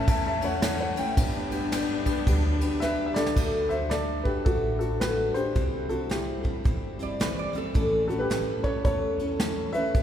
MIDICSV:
0, 0, Header, 1, 7, 480
1, 0, Start_track
1, 0, Tempo, 548446
1, 1026, Time_signature, 4, 2, 24, 8
1, 8777, End_track
2, 0, Start_track
2, 0, Title_t, "Resonator guitar played with a steel bar"
2, 0, Program_c, 0, 25
2, 6149, Note_on_c, 0, 74, 81
2, 6302, Note_off_c, 0, 74, 0
2, 6310, Note_on_c, 0, 71, 82
2, 6463, Note_off_c, 0, 71, 0
2, 6466, Note_on_c, 0, 74, 71
2, 6621, Note_off_c, 0, 74, 0
2, 6631, Note_on_c, 0, 69, 86
2, 6928, Note_off_c, 0, 69, 0
2, 8777, End_track
3, 0, Start_track
3, 0, Title_t, "Upright piano"
3, 0, Program_c, 1, 0
3, 74, Note_on_c, 1, 76, 79
3, 80, Note_on_c, 1, 81, 89
3, 219, Note_off_c, 1, 76, 0
3, 224, Note_off_c, 1, 81, 0
3, 232, Note_on_c, 1, 76, 82
3, 237, Note_on_c, 1, 81, 89
3, 378, Note_off_c, 1, 76, 0
3, 387, Note_off_c, 1, 81, 0
3, 388, Note_on_c, 1, 73, 78
3, 396, Note_on_c, 1, 78, 89
3, 530, Note_off_c, 1, 73, 0
3, 537, Note_off_c, 1, 78, 0
3, 543, Note_on_c, 1, 73, 78
3, 550, Note_on_c, 1, 78, 90
3, 690, Note_off_c, 1, 73, 0
3, 698, Note_off_c, 1, 78, 0
3, 703, Note_on_c, 1, 73, 78
3, 711, Note_on_c, 1, 78, 80
3, 853, Note_off_c, 1, 73, 0
3, 864, Note_off_c, 1, 78, 0
3, 866, Note_on_c, 1, 79, 101
3, 1796, Note_off_c, 1, 79, 0
3, 2452, Note_on_c, 1, 76, 104
3, 2472, Note_on_c, 1, 71, 83
3, 2667, Note_off_c, 1, 76, 0
3, 2676, Note_off_c, 1, 71, 0
3, 2680, Note_on_c, 1, 76, 86
3, 2751, Note_on_c, 1, 74, 104
3, 2760, Note_off_c, 1, 76, 0
3, 2771, Note_on_c, 1, 69, 86
3, 3214, Note_off_c, 1, 69, 0
3, 3230, Note_on_c, 1, 76, 93
3, 3242, Note_on_c, 1, 72, 71
3, 3252, Note_off_c, 1, 74, 0
3, 3411, Note_off_c, 1, 72, 0
3, 3412, Note_on_c, 1, 74, 91
3, 3423, Note_off_c, 1, 76, 0
3, 3433, Note_on_c, 1, 69, 74
3, 3707, Note_off_c, 1, 69, 0
3, 3707, Note_on_c, 1, 71, 81
3, 3726, Note_off_c, 1, 74, 0
3, 3728, Note_on_c, 1, 67, 65
3, 3893, Note_on_c, 1, 69, 82
3, 3894, Note_off_c, 1, 67, 0
3, 3901, Note_off_c, 1, 71, 0
3, 3911, Note_on_c, 1, 66, 67
3, 4179, Note_off_c, 1, 69, 0
3, 4186, Note_off_c, 1, 66, 0
3, 4193, Note_on_c, 1, 69, 82
3, 4209, Note_on_c, 1, 66, 64
3, 4374, Note_off_c, 1, 66, 0
3, 4378, Note_on_c, 1, 71, 84
3, 4384, Note_off_c, 1, 69, 0
3, 4397, Note_on_c, 1, 66, 62
3, 4669, Note_off_c, 1, 66, 0
3, 4675, Note_on_c, 1, 72, 95
3, 4689, Note_off_c, 1, 71, 0
3, 4690, Note_on_c, 1, 67, 67
3, 5134, Note_off_c, 1, 67, 0
3, 5158, Note_on_c, 1, 69, 74
3, 5169, Note_on_c, 1, 66, 58
3, 5174, Note_off_c, 1, 72, 0
3, 5334, Note_off_c, 1, 66, 0
3, 5347, Note_off_c, 1, 69, 0
3, 5347, Note_on_c, 1, 67, 71
3, 5359, Note_on_c, 1, 64, 55
3, 6271, Note_off_c, 1, 67, 0
3, 6277, Note_off_c, 1, 64, 0
3, 7069, Note_on_c, 1, 69, 84
3, 7085, Note_on_c, 1, 66, 61
3, 7167, Note_on_c, 1, 71, 94
3, 7168, Note_off_c, 1, 66, 0
3, 7170, Note_off_c, 1, 69, 0
3, 7185, Note_on_c, 1, 67, 77
3, 7542, Note_off_c, 1, 67, 0
3, 7558, Note_on_c, 1, 73, 92
3, 7572, Note_off_c, 1, 71, 0
3, 7577, Note_on_c, 1, 69, 67
3, 7728, Note_off_c, 1, 73, 0
3, 7739, Note_off_c, 1, 69, 0
3, 7741, Note_on_c, 1, 73, 90
3, 7763, Note_on_c, 1, 69, 72
3, 8498, Note_off_c, 1, 69, 0
3, 8512, Note_on_c, 1, 76, 108
3, 8529, Note_on_c, 1, 71, 80
3, 8546, Note_off_c, 1, 73, 0
3, 8777, Note_off_c, 1, 71, 0
3, 8777, Note_off_c, 1, 76, 0
3, 8777, End_track
4, 0, Start_track
4, 0, Title_t, "Steel-string acoustic guitar"
4, 0, Program_c, 2, 25
4, 65, Note_on_c, 2, 57, 57
4, 74, Note_on_c, 2, 61, 60
4, 80, Note_on_c, 2, 64, 67
4, 83, Note_on_c, 2, 73, 65
4, 349, Note_off_c, 2, 73, 0
4, 357, Note_off_c, 2, 64, 0
4, 359, Note_on_c, 2, 73, 58
4, 362, Note_off_c, 2, 61, 0
4, 365, Note_off_c, 2, 57, 0
4, 368, Note_on_c, 2, 64, 51
4, 372, Note_on_c, 2, 61, 47
4, 378, Note_on_c, 2, 57, 48
4, 532, Note_off_c, 2, 57, 0
4, 537, Note_off_c, 2, 61, 0
4, 539, Note_off_c, 2, 64, 0
4, 540, Note_off_c, 2, 73, 0
4, 541, Note_on_c, 2, 45, 77
4, 542, Note_on_c, 2, 57, 79
4, 544, Note_on_c, 2, 52, 76
4, 547, Note_on_c, 2, 61, 80
4, 549, Note_on_c, 2, 64, 87
4, 551, Note_on_c, 2, 73, 89
4, 830, Note_off_c, 2, 73, 0
4, 837, Note_off_c, 2, 64, 0
4, 841, Note_on_c, 2, 73, 64
4, 842, Note_off_c, 2, 61, 0
4, 843, Note_off_c, 2, 45, 0
4, 843, Note_off_c, 2, 57, 0
4, 844, Note_off_c, 2, 52, 0
4, 848, Note_on_c, 2, 64, 63
4, 853, Note_on_c, 2, 61, 57
4, 857, Note_on_c, 2, 57, 52
4, 1022, Note_off_c, 2, 57, 0
4, 1023, Note_off_c, 2, 73, 0
4, 1026, Note_on_c, 2, 55, 83
4, 1027, Note_off_c, 2, 64, 0
4, 1028, Note_off_c, 2, 61, 0
4, 1032, Note_on_c, 2, 62, 79
4, 1037, Note_on_c, 2, 67, 83
4, 1038, Note_on_c, 2, 71, 97
4, 1313, Note_off_c, 2, 71, 0
4, 1323, Note_off_c, 2, 67, 0
4, 1323, Note_on_c, 2, 71, 56
4, 1325, Note_off_c, 2, 55, 0
4, 1328, Note_off_c, 2, 62, 0
4, 1333, Note_on_c, 2, 67, 52
4, 1341, Note_on_c, 2, 62, 44
4, 1497, Note_off_c, 2, 62, 0
4, 1501, Note_off_c, 2, 67, 0
4, 1504, Note_off_c, 2, 71, 0
4, 1504, Note_on_c, 2, 55, 88
4, 1508, Note_on_c, 2, 62, 81
4, 1511, Note_on_c, 2, 67, 88
4, 1514, Note_on_c, 2, 71, 90
4, 1790, Note_off_c, 2, 71, 0
4, 1799, Note_off_c, 2, 67, 0
4, 1801, Note_on_c, 2, 71, 68
4, 1803, Note_off_c, 2, 55, 0
4, 1805, Note_off_c, 2, 62, 0
4, 1810, Note_on_c, 2, 67, 65
4, 1817, Note_on_c, 2, 62, 55
4, 1979, Note_off_c, 2, 62, 0
4, 1983, Note_off_c, 2, 71, 0
4, 1984, Note_off_c, 2, 67, 0
4, 1984, Note_on_c, 2, 55, 69
4, 1989, Note_on_c, 2, 62, 77
4, 1995, Note_on_c, 2, 67, 73
4, 2001, Note_on_c, 2, 71, 82
4, 2273, Note_off_c, 2, 71, 0
4, 2282, Note_off_c, 2, 67, 0
4, 2283, Note_off_c, 2, 55, 0
4, 2284, Note_on_c, 2, 71, 67
4, 2286, Note_off_c, 2, 62, 0
4, 2293, Note_on_c, 2, 67, 62
4, 2299, Note_on_c, 2, 62, 55
4, 2460, Note_off_c, 2, 62, 0
4, 2463, Note_off_c, 2, 67, 0
4, 2464, Note_off_c, 2, 71, 0
4, 2465, Note_on_c, 2, 55, 89
4, 2471, Note_on_c, 2, 62, 97
4, 2473, Note_on_c, 2, 67, 94
4, 2476, Note_on_c, 2, 71, 98
4, 2754, Note_off_c, 2, 71, 0
4, 2764, Note_off_c, 2, 55, 0
4, 2764, Note_off_c, 2, 67, 0
4, 2764, Note_on_c, 2, 71, 78
4, 2767, Note_off_c, 2, 62, 0
4, 2774, Note_on_c, 2, 67, 63
4, 2783, Note_on_c, 2, 62, 57
4, 2943, Note_off_c, 2, 62, 0
4, 2944, Note_off_c, 2, 71, 0
4, 2948, Note_on_c, 2, 50, 71
4, 2949, Note_off_c, 2, 67, 0
4, 2952, Note_on_c, 2, 57, 71
4, 2953, Note_on_c, 2, 62, 83
4, 2960, Note_on_c, 2, 66, 72
4, 2963, Note_on_c, 2, 69, 80
4, 3236, Note_off_c, 2, 69, 0
4, 3245, Note_off_c, 2, 50, 0
4, 3247, Note_off_c, 2, 57, 0
4, 3247, Note_on_c, 2, 69, 49
4, 3248, Note_off_c, 2, 62, 0
4, 3248, Note_off_c, 2, 66, 0
4, 3258, Note_on_c, 2, 66, 44
4, 3266, Note_on_c, 2, 62, 38
4, 3425, Note_off_c, 2, 69, 0
4, 3426, Note_off_c, 2, 62, 0
4, 3429, Note_off_c, 2, 66, 0
4, 3429, Note_on_c, 2, 50, 67
4, 3434, Note_on_c, 2, 57, 68
4, 3437, Note_on_c, 2, 62, 67
4, 3439, Note_on_c, 2, 66, 70
4, 3440, Note_on_c, 2, 69, 70
4, 3711, Note_off_c, 2, 69, 0
4, 3721, Note_off_c, 2, 66, 0
4, 3721, Note_on_c, 2, 69, 54
4, 3726, Note_off_c, 2, 50, 0
4, 3727, Note_off_c, 2, 62, 0
4, 3728, Note_off_c, 2, 57, 0
4, 3731, Note_on_c, 2, 66, 48
4, 3738, Note_on_c, 2, 62, 41
4, 3900, Note_off_c, 2, 62, 0
4, 3903, Note_off_c, 2, 69, 0
4, 3903, Note_on_c, 2, 57, 57
4, 3908, Note_off_c, 2, 66, 0
4, 3911, Note_on_c, 2, 62, 59
4, 3917, Note_on_c, 2, 66, 54
4, 3921, Note_on_c, 2, 69, 57
4, 4199, Note_off_c, 2, 69, 0
4, 4203, Note_off_c, 2, 57, 0
4, 4207, Note_off_c, 2, 62, 0
4, 4208, Note_off_c, 2, 66, 0
4, 4210, Note_on_c, 2, 69, 52
4, 4218, Note_on_c, 2, 66, 45
4, 4228, Note_on_c, 2, 62, 44
4, 4386, Note_off_c, 2, 62, 0
4, 4386, Note_off_c, 2, 66, 0
4, 4387, Note_off_c, 2, 69, 0
4, 4389, Note_on_c, 2, 50, 72
4, 4393, Note_on_c, 2, 57, 73
4, 4396, Note_on_c, 2, 62, 71
4, 4397, Note_on_c, 2, 66, 79
4, 4399, Note_on_c, 2, 69, 75
4, 4670, Note_off_c, 2, 69, 0
4, 4680, Note_on_c, 2, 69, 61
4, 4681, Note_off_c, 2, 66, 0
4, 4686, Note_off_c, 2, 50, 0
4, 4687, Note_off_c, 2, 62, 0
4, 4688, Note_off_c, 2, 57, 0
4, 4692, Note_on_c, 2, 66, 54
4, 4698, Note_on_c, 2, 62, 44
4, 4859, Note_on_c, 2, 48, 69
4, 4862, Note_off_c, 2, 62, 0
4, 4862, Note_off_c, 2, 69, 0
4, 4863, Note_on_c, 2, 52, 71
4, 4864, Note_on_c, 2, 55, 74
4, 4866, Note_on_c, 2, 60, 81
4, 4867, Note_off_c, 2, 66, 0
4, 4870, Note_on_c, 2, 64, 75
4, 4874, Note_on_c, 2, 72, 81
4, 5147, Note_off_c, 2, 72, 0
4, 5154, Note_off_c, 2, 64, 0
4, 5158, Note_on_c, 2, 72, 53
4, 5161, Note_off_c, 2, 48, 0
4, 5162, Note_off_c, 2, 60, 0
4, 5163, Note_off_c, 2, 52, 0
4, 5163, Note_off_c, 2, 55, 0
4, 5164, Note_on_c, 2, 64, 47
4, 5172, Note_on_c, 2, 60, 40
4, 5178, Note_on_c, 2, 55, 40
4, 5328, Note_off_c, 2, 55, 0
4, 5329, Note_off_c, 2, 60, 0
4, 5332, Note_off_c, 2, 64, 0
4, 5333, Note_off_c, 2, 72, 0
4, 5334, Note_on_c, 2, 52, 61
4, 5335, Note_on_c, 2, 48, 78
4, 5338, Note_on_c, 2, 55, 65
4, 5340, Note_on_c, 2, 60, 67
4, 5343, Note_on_c, 2, 64, 68
4, 5343, Note_on_c, 2, 72, 67
4, 5624, Note_off_c, 2, 72, 0
4, 5630, Note_off_c, 2, 64, 0
4, 5634, Note_on_c, 2, 72, 57
4, 5636, Note_off_c, 2, 60, 0
4, 5639, Note_off_c, 2, 48, 0
4, 5639, Note_off_c, 2, 52, 0
4, 5640, Note_on_c, 2, 64, 47
4, 5641, Note_off_c, 2, 55, 0
4, 5646, Note_on_c, 2, 60, 44
4, 5652, Note_on_c, 2, 55, 43
4, 5802, Note_off_c, 2, 55, 0
4, 5810, Note_off_c, 2, 60, 0
4, 5813, Note_on_c, 2, 55, 57
4, 5814, Note_off_c, 2, 64, 0
4, 5820, Note_off_c, 2, 72, 0
4, 5820, Note_on_c, 2, 60, 57
4, 5824, Note_on_c, 2, 64, 55
4, 5831, Note_on_c, 2, 72, 68
4, 6108, Note_off_c, 2, 72, 0
4, 6115, Note_off_c, 2, 64, 0
4, 6117, Note_off_c, 2, 60, 0
4, 6118, Note_off_c, 2, 55, 0
4, 6119, Note_on_c, 2, 72, 63
4, 6125, Note_on_c, 2, 64, 52
4, 6128, Note_on_c, 2, 60, 50
4, 6134, Note_on_c, 2, 55, 47
4, 6294, Note_off_c, 2, 55, 0
4, 6296, Note_off_c, 2, 60, 0
4, 6297, Note_off_c, 2, 64, 0
4, 6299, Note_off_c, 2, 72, 0
4, 6299, Note_on_c, 2, 48, 82
4, 6300, Note_on_c, 2, 52, 84
4, 6305, Note_on_c, 2, 55, 77
4, 6306, Note_on_c, 2, 60, 91
4, 6307, Note_on_c, 2, 64, 92
4, 6310, Note_on_c, 2, 72, 89
4, 6582, Note_off_c, 2, 72, 0
4, 6592, Note_off_c, 2, 64, 0
4, 6592, Note_on_c, 2, 72, 67
4, 6596, Note_off_c, 2, 60, 0
4, 6599, Note_off_c, 2, 55, 0
4, 6601, Note_off_c, 2, 48, 0
4, 6602, Note_off_c, 2, 52, 0
4, 6602, Note_on_c, 2, 64, 58
4, 6606, Note_on_c, 2, 60, 58
4, 6609, Note_on_c, 2, 55, 50
4, 6777, Note_on_c, 2, 45, 76
4, 6779, Note_off_c, 2, 64, 0
4, 6779, Note_off_c, 2, 72, 0
4, 6782, Note_on_c, 2, 52, 89
4, 6783, Note_off_c, 2, 55, 0
4, 6785, Note_off_c, 2, 60, 0
4, 6787, Note_on_c, 2, 57, 85
4, 6788, Note_on_c, 2, 61, 80
4, 6790, Note_on_c, 2, 64, 93
4, 6791, Note_on_c, 2, 69, 95
4, 7069, Note_off_c, 2, 69, 0
4, 7079, Note_off_c, 2, 64, 0
4, 7080, Note_off_c, 2, 45, 0
4, 7080, Note_on_c, 2, 69, 47
4, 7083, Note_off_c, 2, 52, 0
4, 7083, Note_off_c, 2, 61, 0
4, 7085, Note_off_c, 2, 57, 0
4, 7090, Note_on_c, 2, 64, 43
4, 7094, Note_on_c, 2, 61, 45
4, 7098, Note_on_c, 2, 57, 38
4, 7260, Note_off_c, 2, 61, 0
4, 7261, Note_off_c, 2, 57, 0
4, 7263, Note_off_c, 2, 64, 0
4, 7263, Note_off_c, 2, 69, 0
4, 7264, Note_on_c, 2, 45, 76
4, 7268, Note_on_c, 2, 52, 74
4, 7270, Note_on_c, 2, 61, 76
4, 7271, Note_on_c, 2, 57, 74
4, 7274, Note_on_c, 2, 64, 84
4, 7276, Note_on_c, 2, 69, 72
4, 7552, Note_off_c, 2, 69, 0
4, 7558, Note_off_c, 2, 64, 0
4, 7563, Note_on_c, 2, 69, 53
4, 7564, Note_off_c, 2, 45, 0
4, 7565, Note_off_c, 2, 61, 0
4, 7566, Note_off_c, 2, 52, 0
4, 7568, Note_off_c, 2, 57, 0
4, 7568, Note_on_c, 2, 64, 59
4, 7576, Note_on_c, 2, 61, 50
4, 7579, Note_on_c, 2, 57, 43
4, 7735, Note_off_c, 2, 57, 0
4, 7739, Note_off_c, 2, 61, 0
4, 7744, Note_off_c, 2, 69, 0
4, 7745, Note_off_c, 2, 64, 0
4, 7746, Note_on_c, 2, 57, 51
4, 7750, Note_on_c, 2, 61, 58
4, 7755, Note_on_c, 2, 64, 68
4, 7762, Note_on_c, 2, 69, 65
4, 8037, Note_off_c, 2, 69, 0
4, 8044, Note_off_c, 2, 64, 0
4, 8045, Note_off_c, 2, 57, 0
4, 8047, Note_off_c, 2, 61, 0
4, 8047, Note_on_c, 2, 69, 57
4, 8054, Note_on_c, 2, 64, 54
4, 8062, Note_on_c, 2, 61, 46
4, 8064, Note_on_c, 2, 57, 40
4, 8226, Note_off_c, 2, 57, 0
4, 8226, Note_off_c, 2, 69, 0
4, 8229, Note_off_c, 2, 61, 0
4, 8230, Note_off_c, 2, 64, 0
4, 8231, Note_on_c, 2, 45, 73
4, 8234, Note_on_c, 2, 52, 79
4, 8237, Note_on_c, 2, 57, 70
4, 8240, Note_on_c, 2, 61, 83
4, 8242, Note_on_c, 2, 64, 74
4, 8242, Note_on_c, 2, 69, 76
4, 8513, Note_off_c, 2, 69, 0
4, 8521, Note_off_c, 2, 64, 0
4, 8524, Note_on_c, 2, 69, 60
4, 8525, Note_off_c, 2, 61, 0
4, 8527, Note_off_c, 2, 45, 0
4, 8529, Note_off_c, 2, 52, 0
4, 8530, Note_off_c, 2, 57, 0
4, 8531, Note_on_c, 2, 64, 51
4, 8535, Note_on_c, 2, 61, 49
4, 8541, Note_on_c, 2, 57, 46
4, 8705, Note_off_c, 2, 57, 0
4, 8705, Note_off_c, 2, 69, 0
4, 8707, Note_off_c, 2, 61, 0
4, 8708, Note_on_c, 2, 55, 78
4, 8709, Note_off_c, 2, 64, 0
4, 8710, Note_on_c, 2, 62, 76
4, 8715, Note_on_c, 2, 67, 81
4, 8718, Note_on_c, 2, 71, 74
4, 8777, Note_off_c, 2, 55, 0
4, 8777, Note_off_c, 2, 62, 0
4, 8777, Note_off_c, 2, 67, 0
4, 8777, Note_off_c, 2, 71, 0
4, 8777, End_track
5, 0, Start_track
5, 0, Title_t, "String section"
5, 0, Program_c, 3, 48
5, 0, Note_on_c, 3, 52, 86
5, 0, Note_on_c, 3, 57, 75
5, 0, Note_on_c, 3, 61, 89
5, 987, Note_off_c, 3, 52, 0
5, 1003, Note_off_c, 3, 57, 0
5, 1004, Note_off_c, 3, 61, 0
5, 1024, Note_on_c, 3, 62, 97
5, 1026, Note_on_c, 3, 59, 78
5, 1027, Note_on_c, 3, 55, 85
5, 2924, Note_off_c, 3, 62, 0
5, 2925, Note_off_c, 3, 55, 0
5, 2925, Note_off_c, 3, 59, 0
5, 8777, End_track
6, 0, Start_track
6, 0, Title_t, "Upright bass"
6, 0, Program_c, 4, 32
6, 70, Note_on_c, 4, 40, 87
6, 793, Note_off_c, 4, 40, 0
6, 1029, Note_on_c, 4, 31, 101
6, 1753, Note_off_c, 4, 31, 0
6, 1989, Note_on_c, 4, 38, 90
6, 2712, Note_off_c, 4, 38, 0
6, 2944, Note_on_c, 4, 38, 89
6, 3669, Note_off_c, 4, 38, 0
6, 3905, Note_on_c, 4, 33, 80
6, 4630, Note_off_c, 4, 33, 0
6, 4866, Note_on_c, 4, 36, 92
6, 5591, Note_off_c, 4, 36, 0
6, 5825, Note_on_c, 4, 31, 77
6, 6550, Note_off_c, 4, 31, 0
6, 6787, Note_on_c, 4, 33, 85
6, 7512, Note_off_c, 4, 33, 0
6, 7746, Note_on_c, 4, 40, 80
6, 8471, Note_off_c, 4, 40, 0
6, 8706, Note_on_c, 4, 31, 84
6, 8777, Note_off_c, 4, 31, 0
6, 8777, End_track
7, 0, Start_track
7, 0, Title_t, "Drums"
7, 68, Note_on_c, 9, 36, 127
7, 68, Note_on_c, 9, 51, 92
7, 156, Note_off_c, 9, 36, 0
7, 156, Note_off_c, 9, 51, 0
7, 367, Note_on_c, 9, 51, 69
7, 455, Note_off_c, 9, 51, 0
7, 545, Note_on_c, 9, 38, 110
7, 545, Note_on_c, 9, 51, 97
7, 633, Note_off_c, 9, 38, 0
7, 633, Note_off_c, 9, 51, 0
7, 848, Note_on_c, 9, 51, 67
7, 935, Note_off_c, 9, 51, 0
7, 1026, Note_on_c, 9, 36, 117
7, 1026, Note_on_c, 9, 51, 93
7, 1114, Note_off_c, 9, 36, 0
7, 1114, Note_off_c, 9, 51, 0
7, 1326, Note_on_c, 9, 51, 70
7, 1414, Note_off_c, 9, 51, 0
7, 1507, Note_on_c, 9, 38, 106
7, 1507, Note_on_c, 9, 51, 90
7, 1594, Note_off_c, 9, 38, 0
7, 1594, Note_off_c, 9, 51, 0
7, 1804, Note_on_c, 9, 36, 77
7, 1804, Note_on_c, 9, 51, 67
7, 1892, Note_off_c, 9, 36, 0
7, 1892, Note_off_c, 9, 51, 0
7, 1986, Note_on_c, 9, 36, 125
7, 1988, Note_on_c, 9, 51, 91
7, 2073, Note_off_c, 9, 36, 0
7, 2076, Note_off_c, 9, 51, 0
7, 2286, Note_on_c, 9, 51, 68
7, 2374, Note_off_c, 9, 51, 0
7, 2468, Note_on_c, 9, 38, 68
7, 2555, Note_off_c, 9, 38, 0
7, 2766, Note_on_c, 9, 38, 105
7, 2854, Note_off_c, 9, 38, 0
7, 2856, Note_on_c, 9, 38, 90
7, 2944, Note_off_c, 9, 38, 0
7, 2945, Note_on_c, 9, 36, 103
7, 2947, Note_on_c, 9, 49, 94
7, 3033, Note_off_c, 9, 36, 0
7, 3035, Note_off_c, 9, 49, 0
7, 3241, Note_on_c, 9, 42, 56
7, 3329, Note_off_c, 9, 42, 0
7, 3421, Note_on_c, 9, 38, 94
7, 3421, Note_on_c, 9, 42, 57
7, 3509, Note_off_c, 9, 38, 0
7, 3509, Note_off_c, 9, 42, 0
7, 3723, Note_on_c, 9, 36, 76
7, 3811, Note_off_c, 9, 36, 0
7, 3904, Note_on_c, 9, 36, 116
7, 3904, Note_on_c, 9, 42, 62
7, 3991, Note_off_c, 9, 36, 0
7, 3992, Note_off_c, 9, 42, 0
7, 4205, Note_on_c, 9, 42, 63
7, 4293, Note_off_c, 9, 42, 0
7, 4386, Note_on_c, 9, 38, 109
7, 4386, Note_on_c, 9, 42, 60
7, 4474, Note_off_c, 9, 38, 0
7, 4474, Note_off_c, 9, 42, 0
7, 4686, Note_on_c, 9, 42, 65
7, 4773, Note_off_c, 9, 42, 0
7, 4864, Note_on_c, 9, 36, 104
7, 4866, Note_on_c, 9, 42, 62
7, 4952, Note_off_c, 9, 36, 0
7, 4954, Note_off_c, 9, 42, 0
7, 5166, Note_on_c, 9, 42, 61
7, 5253, Note_off_c, 9, 42, 0
7, 5347, Note_on_c, 9, 38, 100
7, 5347, Note_on_c, 9, 42, 63
7, 5435, Note_off_c, 9, 38, 0
7, 5435, Note_off_c, 9, 42, 0
7, 5644, Note_on_c, 9, 36, 74
7, 5731, Note_off_c, 9, 36, 0
7, 5823, Note_on_c, 9, 42, 62
7, 5824, Note_on_c, 9, 36, 116
7, 5910, Note_off_c, 9, 42, 0
7, 5912, Note_off_c, 9, 36, 0
7, 6127, Note_on_c, 9, 42, 60
7, 6215, Note_off_c, 9, 42, 0
7, 6308, Note_on_c, 9, 38, 109
7, 6396, Note_off_c, 9, 38, 0
7, 6609, Note_on_c, 9, 42, 59
7, 6696, Note_off_c, 9, 42, 0
7, 6784, Note_on_c, 9, 36, 110
7, 6788, Note_on_c, 9, 42, 59
7, 6872, Note_off_c, 9, 36, 0
7, 6875, Note_off_c, 9, 42, 0
7, 7091, Note_on_c, 9, 42, 60
7, 7179, Note_off_c, 9, 42, 0
7, 7271, Note_on_c, 9, 38, 106
7, 7271, Note_on_c, 9, 42, 57
7, 7358, Note_off_c, 9, 38, 0
7, 7358, Note_off_c, 9, 42, 0
7, 7563, Note_on_c, 9, 36, 77
7, 7650, Note_off_c, 9, 36, 0
7, 7744, Note_on_c, 9, 36, 108
7, 7746, Note_on_c, 9, 42, 67
7, 7832, Note_off_c, 9, 36, 0
7, 7833, Note_off_c, 9, 42, 0
7, 8046, Note_on_c, 9, 42, 61
7, 8134, Note_off_c, 9, 42, 0
7, 8223, Note_on_c, 9, 38, 107
7, 8223, Note_on_c, 9, 42, 65
7, 8311, Note_off_c, 9, 38, 0
7, 8311, Note_off_c, 9, 42, 0
7, 8526, Note_on_c, 9, 42, 67
7, 8613, Note_off_c, 9, 42, 0
7, 8706, Note_on_c, 9, 36, 108
7, 8707, Note_on_c, 9, 42, 69
7, 8777, Note_off_c, 9, 36, 0
7, 8777, Note_off_c, 9, 42, 0
7, 8777, End_track
0, 0, End_of_file